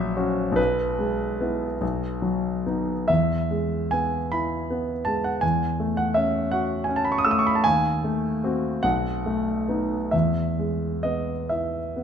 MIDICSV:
0, 0, Header, 1, 2, 480
1, 0, Start_track
1, 0, Key_signature, 4, "major"
1, 0, Tempo, 819672
1, 338, Time_signature, 6, 3, 24, 8
1, 1306, Tempo, 848656
1, 2266, Tempo, 772201
1, 2746, Tempo, 729927
1, 4186, Tempo, 769231
1, 5146, Tempo, 817439
1, 5626, Tempo, 881057
1, 6106, Tempo, 918836
1, 7103, End_track
2, 0, Start_track
2, 0, Title_t, "Grand piano"
2, 0, Program_c, 0, 0
2, 0, Control_c, 0, 64, 127
2, 0, Note_on_c, 0, 34, 72
2, 0, Note_on_c, 0, 54, 55
2, 0, Note_on_c, 0, 76, 99
2, 98, Note_on_c, 0, 61, 49
2, 99, Note_on_c, 0, 66, 55
2, 241, Note_off_c, 0, 54, 0
2, 303, Note_on_c, 0, 35, 62
2, 313, Note_off_c, 0, 61, 0
2, 314, Note_off_c, 0, 66, 0
2, 319, Note_off_c, 0, 34, 0
2, 328, Note_on_c, 0, 71, 83
2, 333, Note_off_c, 0, 76, 0
2, 350, Control_c, 0, 64, 0
2, 447, Control_c, 0, 64, 127
2, 578, Note_on_c, 0, 56, 50
2, 824, Note_on_c, 0, 59, 46
2, 827, Note_on_c, 0, 64, 44
2, 967, Note_off_c, 0, 56, 0
2, 1025, Note_off_c, 0, 35, 0
2, 1039, Note_off_c, 0, 59, 0
2, 1041, Note_off_c, 0, 64, 0
2, 1061, Note_on_c, 0, 35, 57
2, 1076, Control_c, 0, 64, 0
2, 1180, Control_c, 0, 64, 127
2, 1301, Note_on_c, 0, 54, 46
2, 1545, Note_off_c, 0, 71, 0
2, 1552, Note_on_c, 0, 59, 41
2, 1552, Note_on_c, 0, 63, 45
2, 1694, Note_off_c, 0, 54, 0
2, 1768, Note_off_c, 0, 35, 0
2, 1770, Note_off_c, 0, 59, 0
2, 1770, Note_off_c, 0, 63, 0
2, 1785, Note_on_c, 0, 76, 74
2, 1795, Note_on_c, 0, 40, 55
2, 1802, Control_c, 0, 64, 0
2, 1910, Control_c, 0, 64, 127
2, 2029, Note_on_c, 0, 56, 46
2, 2256, Note_on_c, 0, 80, 74
2, 2262, Note_off_c, 0, 76, 0
2, 2264, Note_on_c, 0, 59, 43
2, 2416, Note_off_c, 0, 56, 0
2, 2507, Note_off_c, 0, 80, 0
2, 2507, Note_on_c, 0, 83, 72
2, 2515, Note_on_c, 0, 64, 47
2, 2653, Note_off_c, 0, 59, 0
2, 2749, Note_on_c, 0, 59, 47
2, 2890, Note_off_c, 0, 64, 0
2, 2975, Note_on_c, 0, 81, 72
2, 2981, Note_off_c, 0, 83, 0
2, 2986, Note_on_c, 0, 56, 43
2, 3098, Note_off_c, 0, 81, 0
2, 3104, Note_on_c, 0, 78, 68
2, 3129, Note_off_c, 0, 59, 0
2, 3198, Note_off_c, 0, 40, 0
2, 3214, Note_on_c, 0, 80, 77
2, 3223, Note_off_c, 0, 78, 0
2, 3224, Note_off_c, 0, 56, 0
2, 3224, Note_on_c, 0, 40, 54
2, 3235, Control_c, 0, 64, 0
2, 3341, Control_c, 0, 64, 127
2, 3468, Note_on_c, 0, 57, 45
2, 3583, Note_on_c, 0, 78, 72
2, 3584, Note_off_c, 0, 80, 0
2, 3696, Note_on_c, 0, 76, 73
2, 3707, Note_off_c, 0, 78, 0
2, 3710, Note_on_c, 0, 61, 44
2, 3855, Note_off_c, 0, 57, 0
2, 3940, Note_on_c, 0, 78, 75
2, 3942, Note_off_c, 0, 76, 0
2, 3951, Note_on_c, 0, 66, 47
2, 4091, Note_off_c, 0, 61, 0
2, 4155, Note_on_c, 0, 80, 63
2, 4157, Note_off_c, 0, 78, 0
2, 4188, Note_on_c, 0, 61, 51
2, 4231, Note_off_c, 0, 80, 0
2, 4231, Note_on_c, 0, 81, 67
2, 4283, Note_on_c, 0, 83, 68
2, 4291, Note_off_c, 0, 81, 0
2, 4325, Note_off_c, 0, 66, 0
2, 4329, Note_on_c, 0, 85, 69
2, 4336, Note_off_c, 0, 83, 0
2, 4370, Note_on_c, 0, 87, 71
2, 4376, Note_off_c, 0, 85, 0
2, 4408, Note_on_c, 0, 88, 72
2, 4414, Note_off_c, 0, 87, 0
2, 4419, Note_on_c, 0, 57, 50
2, 4449, Note_on_c, 0, 87, 72
2, 4453, Note_off_c, 0, 88, 0
2, 4496, Note_off_c, 0, 87, 0
2, 4498, Note_on_c, 0, 85, 73
2, 4546, Note_on_c, 0, 83, 71
2, 4547, Note_off_c, 0, 85, 0
2, 4562, Note_off_c, 0, 61, 0
2, 4600, Note_off_c, 0, 83, 0
2, 4600, Note_on_c, 0, 81, 67
2, 4633, Note_off_c, 0, 40, 0
2, 4653, Note_on_c, 0, 80, 97
2, 4656, Note_off_c, 0, 81, 0
2, 4658, Note_off_c, 0, 57, 0
2, 4666, Note_on_c, 0, 39, 66
2, 4670, Control_c, 0, 64, 0
2, 4762, Control_c, 0, 64, 127
2, 4906, Note_on_c, 0, 57, 52
2, 5153, Note_on_c, 0, 60, 47
2, 5155, Note_on_c, 0, 66, 51
2, 5293, Note_off_c, 0, 57, 0
2, 5365, Note_off_c, 0, 60, 0
2, 5366, Note_off_c, 0, 66, 0
2, 5368, Note_off_c, 0, 39, 0
2, 5380, Note_on_c, 0, 78, 87
2, 5383, Note_off_c, 0, 80, 0
2, 5388, Note_on_c, 0, 35, 64
2, 5396, Control_c, 0, 64, 0
2, 5504, Control_c, 0, 64, 127
2, 5634, Note_on_c, 0, 57, 52
2, 5865, Note_on_c, 0, 59, 43
2, 5866, Note_on_c, 0, 63, 45
2, 6009, Note_off_c, 0, 57, 0
2, 6086, Note_off_c, 0, 35, 0
2, 6087, Note_off_c, 0, 59, 0
2, 6088, Note_off_c, 0, 63, 0
2, 6099, Note_on_c, 0, 76, 65
2, 6103, Note_off_c, 0, 78, 0
2, 6108, Note_on_c, 0, 40, 50
2, 6117, Control_c, 0, 64, 0
2, 6202, Control_c, 0, 64, 127
2, 6350, Note_on_c, 0, 56, 38
2, 6578, Note_on_c, 0, 75, 61
2, 6586, Note_on_c, 0, 59, 36
2, 6732, Note_off_c, 0, 56, 0
2, 6813, Note_off_c, 0, 76, 0
2, 6820, Note_on_c, 0, 76, 55
2, 6822, Note_off_c, 0, 75, 0
2, 6830, Note_on_c, 0, 64, 35
2, 6970, Note_off_c, 0, 59, 0
2, 7065, Note_on_c, 0, 59, 35
2, 7103, Note_off_c, 0, 40, 0
2, 7103, Note_off_c, 0, 59, 0
2, 7103, Note_off_c, 0, 64, 0
2, 7103, Note_off_c, 0, 76, 0
2, 7103, End_track
0, 0, End_of_file